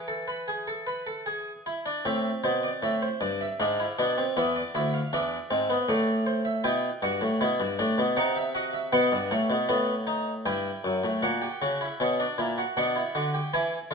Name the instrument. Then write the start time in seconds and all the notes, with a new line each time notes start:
harpsichord
Already playing: E3 B4
0.08 A4
0.28 B4
0.48 G#4
0.68 A4
0.87 B4
1.07 A4
1.26 G#4
1.66 E4
1.86 D4
2.05 A2 C4 E5
2.44 B2 C5
2.63 D5
2.83 A2 E5
3.02 C5
3.21 G2 D5
3.41 E5
3.60 G#2 D4 F5
3.80 E4
3.99 B2 D4
4.18 C4
4.37 E2 B3 E5
4.56 D5
4.75 D2 E4 E5
4.94 F5
5.13 E2 D4 E5
5.50 G#2 C4
5.70 B3
5.89 A2 A3 D5
6.27 C5
6.45 E5
6.64 B2 E4 G5
7.02 G2 F#4
7.21 A2
7.41 B2 E4
7.60 G2
7.79 A2 D4
7.98 B2
8.17 C3 D#4 F#5
8.36 E5
8.55 F#4 D#5
8.73 E5
8.93 B2 B3 F#5
9.12 G2
9.31 A2 A3
9.50 B2
9.69 A2 B3
10.07 D#4
10.46 G2 E4 G5
10.84 F#2
11.04 A2
11.23 A#2 F#4 F#5
11.42 G4
11.62 C#3 F#4
11.81 E4
12.00 B2 C#4
12.20 D4
12.38 A#2 E4
12.58 F#4
12.77 B2 D4 F#5
12.96 E4
13.15 D3 F#4
13.34 G4
13.53 E3 E4 G#5
13.91 D3 F4